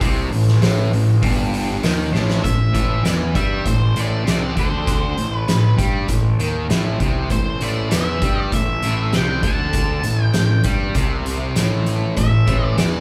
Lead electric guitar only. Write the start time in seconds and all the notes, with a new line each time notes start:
2.44 E5
3.06 D5
3.36 E5
3.67 C5
4.00 D5
4.30 D5
4.59 C5
5.35 B4
7.32 C5
7.62 D5
7.95 E5
8.42 D5
8.55 E5
9.15 G5
9.44 A5
10.24 G5
12.17 E5
12.65 D5
12.79 D5